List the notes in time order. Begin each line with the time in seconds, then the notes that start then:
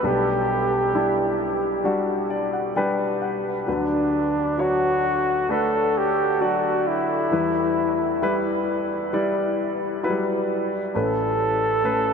0.03 B1 B2 G3 D4 G4 B4
0.94 G3 D4 E4
1.84 G3 D4 F#4
2.30 D5
2.53 F#5
2.76 G3 D4 B4 G5
3.22 F#5
3.67 D2 D3 F#3 D4 B4
4.58 F#3 D4 F#4 C#5
5.49 A3 D4 A4 B4
5.98 G4
6.41 F#3 D4 F#4 D5
6.87 E4
7.31 E2 E3 G3 E4 B4
8.22 G3 E4 B4
9.13 G3 E4 D5
10.03 F#3 E4 B4
10.10 G3
10.95 A1 A2 A3 C#4 A4 B4
11.84 A3 C#4 B4